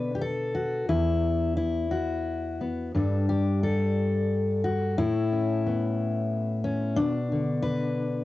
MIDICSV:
0, 0, Header, 1, 2, 480
1, 0, Start_track
1, 0, Tempo, 680272
1, 629, Time_signature, 6, 3, 24, 8
1, 3518, Tempo, 662252
1, 5877, End_track
2, 0, Start_track
2, 0, Title_t, "Steel-string acoustic guitar"
2, 0, Program_c, 0, 25
2, 0, Note_on_c, 0, 47, 80
2, 0, Note_on_c, 0, 50, 45
2, 0, Note_on_c, 0, 62, 106
2, 0, Note_on_c, 0, 71, 103
2, 106, Note_on_c, 0, 67, 75
2, 149, Note_off_c, 0, 71, 0
2, 152, Note_on_c, 0, 69, 95
2, 155, Note_off_c, 0, 67, 0
2, 156, Note_off_c, 0, 62, 0
2, 386, Note_on_c, 0, 66, 91
2, 598, Note_off_c, 0, 47, 0
2, 625, Note_off_c, 0, 69, 0
2, 626, Note_off_c, 0, 66, 0
2, 626, Note_on_c, 0, 40, 78
2, 627, Note_on_c, 0, 64, 97
2, 632, Note_off_c, 0, 50, 0
2, 1098, Note_off_c, 0, 64, 0
2, 1107, Note_on_c, 0, 64, 85
2, 1348, Note_on_c, 0, 66, 83
2, 1831, Note_off_c, 0, 64, 0
2, 1840, Note_on_c, 0, 59, 48
2, 2050, Note_off_c, 0, 59, 0
2, 2074, Note_off_c, 0, 40, 0
2, 2076, Note_off_c, 0, 66, 0
2, 2078, Note_on_c, 0, 43, 78
2, 2083, Note_on_c, 0, 55, 49
2, 2088, Note_on_c, 0, 62, 47
2, 2095, Note_on_c, 0, 69, 48
2, 2319, Note_off_c, 0, 69, 0
2, 2321, Note_on_c, 0, 67, 81
2, 2560, Note_off_c, 0, 67, 0
2, 2563, Note_on_c, 0, 69, 93
2, 3272, Note_off_c, 0, 62, 0
2, 3274, Note_on_c, 0, 66, 88
2, 3493, Note_off_c, 0, 43, 0
2, 3511, Note_off_c, 0, 69, 0
2, 3514, Note_on_c, 0, 45, 81
2, 3514, Note_on_c, 0, 64, 101
2, 3516, Note_off_c, 0, 66, 0
2, 3523, Note_off_c, 0, 55, 0
2, 3764, Note_on_c, 0, 61, 44
2, 4010, Note_on_c, 0, 59, 49
2, 4708, Note_off_c, 0, 61, 0
2, 4717, Note_on_c, 0, 61, 88
2, 4948, Note_off_c, 0, 59, 0
2, 4951, Note_on_c, 0, 62, 113
2, 4960, Note_off_c, 0, 61, 0
2, 4963, Note_off_c, 0, 64, 0
2, 4964, Note_off_c, 0, 45, 0
2, 4966, Note_on_c, 0, 47, 80
2, 5209, Note_on_c, 0, 50, 46
2, 5430, Note_on_c, 0, 71, 102
2, 5877, Note_off_c, 0, 47, 0
2, 5877, Note_off_c, 0, 50, 0
2, 5877, Note_off_c, 0, 62, 0
2, 5877, Note_off_c, 0, 71, 0
2, 5877, End_track
0, 0, End_of_file